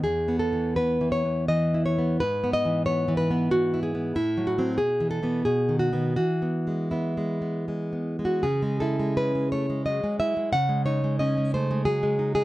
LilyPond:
\new Staff \with { instrumentName = "Nylon-string guitar" } { \time 3/4 \key e \major \tempo 4 = 88 << { gis'8 a'8 b'8 cis''8 dis''8 cis''8 | b'8 dis''8 cis''8 b'8 fis'8 gis'8 | e'8 fis'8 gis'8 a'8 gis'8 fis'8 | fis'4 e'4. r16 fis'16 |
\key cis \minor gis'8 a'8 b'8 cis''8 dis''8 e''8 | fis''8 cis''8 dis''8 bis'8 gis'8. gis'16 | } \\ { \tuplet 3/2 { e,8 b8 e8 b8 e8 b8 e8 e'8 b8 } | \tuplet 3/2 { gis,8 b8 e8 b8 e8 b8 e8 e'8 b8 } | \tuplet 3/2 { a,8 fis8 <fis c'>8 b,8 e8 <e b>8 b,8 dis8 <dis b>8 } | \tuplet 3/2 { e8 b8 gis8 b8 gis8 b8 gis8 b8 gis8 } |
cis16 gis16 e'16 gis16 cis'16 gis16 a16 gis16 fis16 gis16 e'16 gis16 | cis16 gis16 dis'16 gis16 cis'16 gis16 a16 gis16 fis16 gis16 dis'16 gis16 | } >> }